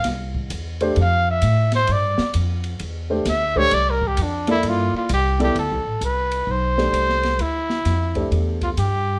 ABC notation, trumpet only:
X:1
M:4/4
L:1/8
Q:"Swing" 1/4=130
K:Gdor
V:1 name="Trumpet"
z3 c f e2 c | d2 z4 e ^c | (3d B G D E F F G G | [K:Ddor] A2 B2 c4 |
E4 z F G2 |]